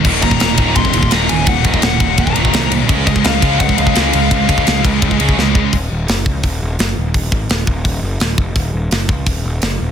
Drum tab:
CC |x---------------|----------------|----------------|----------------|
RD |--x-x-x-x-x-x-x-|x-x-x-x-x-x-x-x-|x-x-x-x-x-x-x-x-|x-x-x-x-x-x-----|
HH |----------------|----------------|----------------|----------------|
SD |----o-------o---|----o-------o---|----o-------o---|----o-------o---|
BD |o-oo--o-oo-o----|o-oo--o-oo-o----|o-oo--o-oo-o----|o-oo--o-oo-o--o-|

CC |----------------|----------------|----------------|
RD |----------------|----------------|----------------|
HH |o---o---o---o---|o---o---o---o---|o---o---o---o---|
SD |----o-------o---|----o-------o---|----o-------o---|
BD |o-----o-o-------|o-o---o-o-----o-|o-----o-o-------|